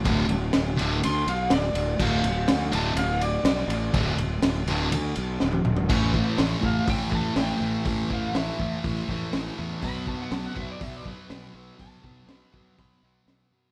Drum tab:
CC |----------------|x---------------|----------------|x---------------|
RD |x-x-x-x-x-x-x-x-|--x-x-x-x-x-x-x-|x-x-x-x-x-x-----|----------------|
HH |----------------|----------------|----------------|----o---o---o---|
SD |----o-------o---|----o-------o---|----o-------o---|----o-------o---|
T1 |----------------|----------------|-------------o--|----------------|
T2 |----------------|----------------|--------------o-|----------------|
FT |----------------|----------------|---------------o|----------------|
BD |o---------------|o---------------|o---------------|o-o---o-o-o-----|

CC |----------------|----------------|----------------|
RD |----------------|----------------|----------------|
HH |o---o---o---o---|o---o---o---o---|o---o---o---o---|
SD |----o-------o---|----o-------o---|----o-------o---|
T1 |----------------|----------------|----------------|
T2 |----------------|----------------|----------------|
FT |----------------|----------------|----------------|
BD |o-o---o-o-o-----|o-o---o-o-o-----|o-o---o-o-------|